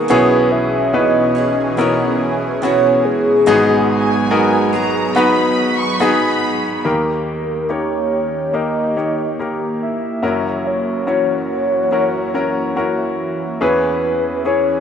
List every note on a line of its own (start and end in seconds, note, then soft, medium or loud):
0.00 0.10 B3 medium
0.00 0.11 D#4 medium
0.00 0.11 F#4 medium
0.00 0.10 G#4 medium
0.00 0.10 G#4 loud
0.00 0.11 A#4 medium
0.08 3.44 B1 medium
0.08 3.44 B2 medium
0.08 3.44 E3 medium
0.08 1.38 B3 medium
0.08 0.90 B3 medium
0.08 0.90 C#4 medium
0.08 3.44 C#4 medium
0.08 1.36 E4 medium
0.08 0.90 E4 medium
0.08 1.36 G#4 medium
0.08 6.81 G#4 loud
0.08 0.90 G#4 loud
0.08 0.53 B4 loud
0.08 1.34 C#5 medium
0.52 0.96 E5 loud
0.93 1.74 B3 medium
0.93 1.74 C#4 medium
0.93 1.74 E4 medium
0.93 1.74 B4 medium
0.93 1.36 D#5 loud
1.35 1.77 E4 soft
1.35 1.78 G#4 soft
1.35 1.78 C#5 medium
1.35 2.17 D#5 loud
1.77 2.61 B3 medium
1.77 2.58 B3 medium
1.77 2.58 C#4 medium
1.77 2.58 E4 medium
1.77 2.62 E4 medium
1.77 2.64 G#4 medium
1.77 2.59 A#4 medium
1.77 2.64 C#5 medium
2.62 3.47 B3 medium
2.62 3.43 B3 medium
2.62 3.43 C#4 medium
2.62 3.47 E4 medium
2.62 3.43 E4 medium
2.62 3.43 F#4 medium
2.62 3.48 G#4 medium
2.62 3.07 C#5 loud
2.62 3.48 C#5 medium
3.05 3.89 G#4 loud
3.46 6.81 G#1 medium
3.46 4.73 G#2 medium
3.46 6.81 G#2 medium
3.46 4.74 F#3 medium
3.46 6.82 F#3 medium
3.46 4.74 G#3 medium
3.46 4.27 B3 medium
3.46 4.74 B3 medium
3.46 6.82 B3 medium
3.46 4.27 D#4 medium
3.46 4.74 D#4 medium
3.46 4.27 F#4 medium
3.46 4.28 G#4 loud
3.46 4.72 G#4 medium
3.91 4.71 G#5 medium
4.31 5.11 B3 medium
4.31 5.11 D#4 medium
4.31 5.12 F#4 medium
4.31 5.12 A#4 medium
4.73 5.14 F#3 soft
4.73 5.15 B3 soft
4.73 5.16 D#4 soft
4.73 5.16 G#4 medium
4.73 5.16 A#5 medium
5.15 5.98 F#3 medium
5.15 5.96 B3 medium
5.15 6.00 B3 medium
5.15 5.96 D#4 medium
5.15 6.02 D#4 medium
5.15 5.96 F#4 medium
5.15 6.02 G#4 medium
5.15 5.96 B4 loud
5.15 5.79 B5 medium
5.78 6.00 C#6 medium
6.00 6.85 F#3 medium
6.00 6.81 B3 medium
6.00 6.85 B3 medium
6.00 6.81 D#4 medium
6.00 7.36 D#4 medium
6.00 6.81 F#4 medium
6.00 6.81 G#4 medium
6.00 6.86 G#4 medium
6.00 6.85 B5 medium
6.85 10.19 D#2 soft
6.85 10.19 D#3 soft
6.85 10.20 D#3 medium
6.85 13.57 A#3 medium
6.85 7.65 A#3 medium
6.85 7.65 D#4 medium
6.85 7.65 G4 medium
6.85 10.20 G4 medium
6.85 7.65 A#4 medium
6.85 7.73 A#4 medium
7.69 8.50 A#3 medium
7.69 8.50 D#4 medium
7.69 8.50 G4 soft
7.69 8.50 C#5 medium
7.69 8.56 C#5 medium
8.53 8.94 A#3 medium
8.53 8.94 D#4 medium
8.53 8.94 G4 medium
8.53 8.94 A#4 medium
8.53 9.39 D#5 medium
8.96 9.36 A#3 medium
8.96 9.37 D#4 soft
8.96 9.37 G4 soft
8.96 9.37 C#5 medium
9.39 10.19 A#3 medium
9.39 10.20 G4 medium
9.39 10.20 A#4 medium
9.82 10.68 E5 loud
10.23 13.57 F#1 soft
10.23 13.57 F#2 medium
10.23 14.80 E3 medium
10.23 11.03 C#4 medium
10.23 11.03 E4 medium
10.23 11.03 F#4 medium
10.23 13.58 F#4 medium
10.23 11.04 A#4 medium
10.67 11.08 C#5 medium
11.07 11.88 C#4 medium
11.07 11.88 E4 medium
11.07 11.88 F#4 medium
11.07 11.88 C#5 medium
11.07 13.16 C#5 medium
11.92 12.32 C#4 medium
11.92 12.32 E4 medium
11.92 12.32 F#4 medium
11.92 12.32 A#4 medium
12.34 12.74 C#4 medium
12.34 12.75 E4 medium
12.34 12.75 F#4 medium
12.34 12.75 A#4 medium
12.76 13.57 C#4 medium
12.76 13.57 E4 medium
12.76 13.57 F#4 medium
12.76 13.57 A#4 medium
13.61 14.80 E2 medium
13.61 14.80 E3 medium
13.61 14.41 C#4 medium
13.61 14.80 C#4 medium
13.61 14.41 E4 medium
13.61 14.80 G#4 medium
13.61 14.41 G#4 medium
13.61 14.42 B4 medium
13.61 14.48 B4 medium
14.45 14.80 C#4 medium
14.45 14.80 E4 medium
14.45 14.80 G#4 medium
14.45 14.80 C#5 medium